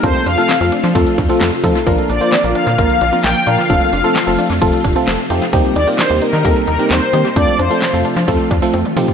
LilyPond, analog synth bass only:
\new Staff \with { instrumentName = "Analog synth bass" } { \clef bass \time 4/4 \key f \mixolydian \tempo 4 = 131 f,16 r16 f,16 r8 f,16 r16 f16 f,16 r16 f,16 r16 f,16 r16 f16 r16 | bes,,16 r16 bes,,16 r8 bes,,16 r16 bes,16 bes,,16 r16 bes,,16 r16 bes,,16 r16 bes,16 r16 | f,,16 r16 f,,16 r8 f,,16 r16 f,16 f,,16 r16 f,,16 r16 f,,16 r16 f,16 r16 | ees,16 r16 ees,16 r8 ees,16 r16 ees16 ees,16 r16 ees,16 r16 ees,16 r16 ees16 r16 |
f,16 r16 f,16 r8 f,16 r16 f16 f,16 r16 f,16 r16 f,16 r16 f16 r16 | }